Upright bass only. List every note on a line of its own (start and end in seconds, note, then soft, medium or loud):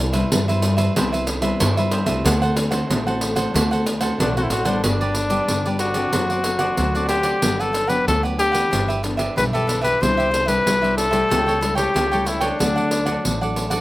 0.00 0.22 C2 loud
0.32 0.87 G2 medium
0.97 1.51 C2 medium
1.62 2.02 G2 medium
2.06 2.21 C2 medium
2.25 2.80 D2 loud
2.90 3.45 A1 medium
3.54 4.09 D2 medium
4.19 4.48 B1 medium
4.50 4.80 A1 medium
4.83 5.39 G1 medium
5.49 6.04 G1 medium
6.13 6.68 F#1 medium
6.78 7.33 D2 medium
7.43 7.98 G1 medium
8.07 8.63 D2 medium
8.72 9.27 G1 medium
9.37 9.92 B1 medium
10.02 10.57 C2 medium
10.66 11.21 C2 medium
11.31 11.86 C#2 medium
11.95 12.50 C#2 medium
12.60 13.15 D2 medium
13.25 13.80 A1 medium